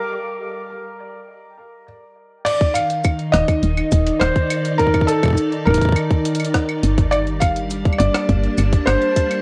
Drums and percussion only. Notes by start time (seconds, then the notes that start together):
2.46 closed hi-hat, crash
2.61 kick, closed hi-hat
2.75 closed hi-hat, claves, shaker
2.90 closed hi-hat
3.05 kick, closed hi-hat, claves, shaker
3.19 closed hi-hat
3.34 cross-stick, closed hi-hat
3.48 kick, closed hi-hat, claves
3.63 closed hi-hat
3.77 closed hi-hat, claves
3.92 kick, closed hi-hat, shaker
4.07 closed hi-hat
4.21 cross-stick, closed hi-hat, claves
4.36 kick, closed hi-hat
4.50 closed hi-hat, claves
4.65 closed hi-hat
4.79 kick, closed hi-hat
4.87 kick
4.94 kick, closed hi-hat, claves
5.01 kick
5.09 closed hi-hat, shaker
5.23 kick, closed hi-hat, claves
5.26 kick
5.28 kick
5.30 kick
5.33 kick
5.35 kick, closed hi-hat, shaker
5.52 closed hi-hat
5.67 kick, claves
5.70 kick, closed hi-hat
5.74 kick
5.78 kick, closed hi-hat
5.81 kick
5.85 kick
5.89 kick
5.92 kick, closed hi-hat, claves
6.10 kick, closed hi-hat
6.25 closed hi-hat
6.35 closed hi-hat
6.40 closed hi-hat, claves
6.44 closed hi-hat
6.54 kick, cross-stick, closed hi-hat
6.69 closed hi-hat, claves
6.83 closed hi-hat
6.98 kick, closed hi-hat
7.12 closed hi-hat, claves
7.27 closed hi-hat
7.42 kick, closed hi-hat, claves, shaker
7.56 closed hi-hat
7.71 closed hi-hat, shaker
7.85 kick, closed hi-hat
7.93 claves
8.00 closed hi-hat
8.14 cross-stick, closed hi-hat, claves
8.29 kick, closed hi-hat
8.43 closed hi-hat
8.58 closed hi-hat, claves, shaker
8.73 kick, closed hi-hat
8.87 cross-stick, closed hi-hat, claves
9.02 closed hi-hat
9.16 kick, closed hi-hat
9.31 closed hi-hat, claves